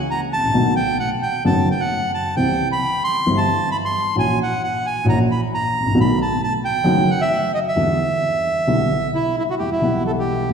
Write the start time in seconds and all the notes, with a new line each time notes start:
0.11 A#5
0.33 G#1 A5
0.43 A1
0.48 A#1
0.54 B1 B2 D#3 A3 B3 F#4
0.76 G5
1.00 F#5
1.22 G5
1.45 F#1 F#2 D#3 A3 B3 F#4 A5
1.71 G5
1.80 F#5
2.14 A5
2.36 C2 C3 E3 B3 C4 G4 G5
2.72 B5
3.04 C6
3.26 G1 G2 E3 B3 C4 G4
3.37 A5
3.72 B5
3.85 C6
4.15 A#1 A#2 E3 A#3 C#4 F#4 G#5
4.43 F#5
4.64 F#5
4.86 G#5
5.04 A#1 A#2 E3 A#3 C#4 F#4
5.09 A#5
5.31 B5
5.54 A#5
5.80 G#1
5.86 A1
5.91 A#1 B2 D#3 B3 F#4
5.95 B1 A3
6.01 B5
6.22 A5
6.44 A5
6.65 G5
6.84 F#1 F#2 D#3 A3 B3 F#4
7.11 F#5
7.21 E5
7.54 D#5
7.68 E5
7.76 E2 D3 E3 G3 B3 E4
8.67 B1 B2 D3 G3 B3 E4
9.15 E4
9.39 E4
9.50 F#4
9.59 E2 E3 G3 B3 F#4 G4
9.72 E4
9.80 B1 B2 E3 G3 B3 F#5
10.07 A4
10.19 G4
10.50 E2 G3